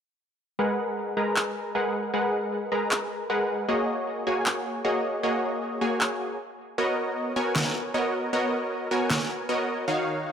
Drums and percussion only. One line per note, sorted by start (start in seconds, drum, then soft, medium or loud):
1.36 clap medium
2.91 clap medium
4.46 clap medium
6.01 clap medium
7.56 snare loud
7.56 clap medium
9.10 snare loud
9.10 clap medium